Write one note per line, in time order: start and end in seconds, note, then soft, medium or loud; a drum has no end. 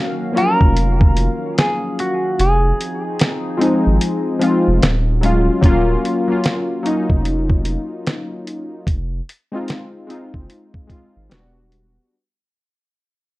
0.00 2.35 D#3 medium
0.00 0.38 F#3 medium
0.00 0.33 A#3 medium
0.00 0.35 C#4 medium
0.00 2.35 C#4 medium
0.00 0.40 F#4 loud
0.00 2.35 F5 medium
0.00 2.40 F5 medium
0.32 0.42 F3 medium
0.32 1.39 A#3 medium
0.32 1.40 C#4 medium
0.36 1.42 F#3 medium
0.36 1.40 F4 medium
0.36 1.59 A#4 loud
0.36 closed hi-hat medium
0.61 1.29 F1 loud
0.61 kick medium
0.77 closed hi-hat medium
1.01 kick loud
1.17 closed hi-hat medium
1.58 2.00 G#4 medium
1.58 snare loud
1.58 closed hi-hat medium
1.99 2.41 F#4 medium
1.99 closed hi-hat medium
2.38 2.73 F1 loud
2.38 4.79 F3 medium
2.38 4.79 C4 medium
2.38 4.79 D#4 medium
2.38 5.59 G#4 medium
2.38 4.79 G#4 medium
2.38 closed hi-hat medium
2.81 closed hi-hat medium
3.19 snare loud
3.19 closed hi-hat medium
3.57 4.11 F3 medium
3.57 4.11 G#3 medium
3.57 4.12 C4 medium
3.57 4.13 D#4 medium
3.61 closed hi-hat medium
3.87 3.99 G#1 medium
4.01 closed hi-hat medium
4.39 4.81 F3 medium
4.39 4.81 G#3 medium
4.39 4.82 C4 medium
4.39 closed hi-hat medium
4.43 4.83 F4 medium
4.68 4.80 F1 loud
4.83 5.50 D#1 loud
4.83 snare loud
4.83 closed hi-hat medium
5.21 5.51 F#3 medium
5.21 5.51 G#3 medium
5.21 5.52 C#4 medium
5.21 closed hi-hat medium
5.25 5.53 F4 medium
5.61 5.97 D#1 loud
5.61 6.00 F#3 loud
5.61 6.01 A#3 loud
5.61 6.02 C#4 loud
5.61 kick loud
5.61 closed hi-hat medium
5.65 6.02 F4 loud
6.05 closed hi-hat medium
6.28 6.65 F#3 medium
6.28 6.66 A#3 medium
6.28 6.66 C#4 medium
6.32 6.67 F4 loud
6.44 snare loud
6.44 closed hi-hat medium
6.83 7.88 F#3 medium
6.83 7.89 A#3 medium
6.83 7.89 C#4 medium
6.83 closed hi-hat medium
6.87 7.90 D#4 loud
7.10 7.77 F1 medium
7.10 kick medium
7.25 closed hi-hat medium
7.50 kick medium
7.65 closed hi-hat medium
8.07 snare loud
8.07 closed hi-hat medium
8.47 closed hi-hat medium
8.87 9.21 F1 loud
8.87 kick loud
8.87 closed hi-hat medium
9.29 closed hi-hat medium
9.52 9.89 G#3 medium
9.52 9.90 C4 medium
9.52 9.90 D#4 medium
9.52 9.91 F4 medium
9.68 snare loud
9.68 closed hi-hat medium
10.07 10.60 G#3 medium
10.07 10.61 C4 medium
10.07 10.61 D#4 medium
10.07 closed hi-hat medium
10.11 10.62 F4 medium
10.34 10.47 F#1 medium
10.34 kick medium
10.50 closed hi-hat medium
10.74 kick medium
10.87 11.29 G#3 medium
10.87 11.30 C4 medium
10.87 11.30 D#4 medium
10.87 kick medium
10.87 closed hi-hat medium
10.91 11.31 F4 loud
11.16 11.28 G#1 medium
11.29 11.98 E1 loud
11.29 11.99 G3 medium
11.29 12.00 B3 medium
11.29 12.00 D4 medium
11.29 snare loud
11.29 closed hi-hat medium
11.34 12.01 F#4 medium
11.72 closed hi-hat medium